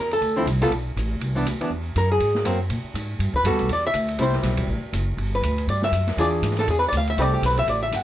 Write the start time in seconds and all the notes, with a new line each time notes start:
Already playing: E2
0.00 A#4
0.11 A4, ride
0.21 D2, ride
0.36 D3 F3 C4 E4
0.46 C2, hi-hat pedal, ride
0.61 G3 B3 F4 A4, snare, ride
0.70 B1, ride
0.96 A1, hi-hat pedal, ride
1.20 C2, ride
1.35 E3 B3 D4
1.45 D2, hi-hat pedal, ride
1.60 E3 B3 D4, muted upright bass stroke, ride
1.70 E2
1.96 F#2 A#4, hi-hat pedal, ride
2.12 G#4
2.20 G#2, ride
2.35 snare
2.45 F#2 F#3 A#3 C4, hi-hat pedal, ride
2.69 A#2, ride
2.84 muted upright bass stroke
2.94 G#2, hi-hat pedal, ride
3.19 G2, ride
3.34 B4, muted upright bass stroke, kick
3.43 F#2 G3 B3 F#4 A4, hi-hat pedal, ride
3.51 D2
3.59 B1, ride
3.69 E2 D5, ride
3.87 E5
3.93 D2, hi-hat pedal, ride
4.08 ride
4.18 C2 G3 C4 E4 C5, ride
4.32 snare
4.43 B1, snare, hi-hat pedal, ride
4.57 kick, ride
4.67 A1
4.82 muted upright bass stroke
4.93 F#1, hi-hat pedal, ride
5.17 G1, ride
5.35 B4
5.42 D2, hi-hat pedal, ride
5.58 ride
5.67 G2 D5, ride
5.82 E5, snare
5.92 F#2, hi-hat pedal, ride
6.07 snare, ride
6.17 E2 E3 D4 F4 G#4 D5, ride
6.42 G#2, hi-hat pedal, ride
6.50 snare
6.57 A4, snare, ride
6.67 E2 G#4, ride
6.79 B4
6.88 D2 D5, hi-hat pedal, ride
6.97 F5
7.07 E5, ride
7.17 C2 A3 C4 G4 B4, ride
7.21 D5
7.34 G4
7.42 B1 B4, hi-hat pedal, ride
7.57 E5, ride
7.66 A1 D5, ride
7.83 E5
7.91 G1 F#5, hi-hat pedal, ride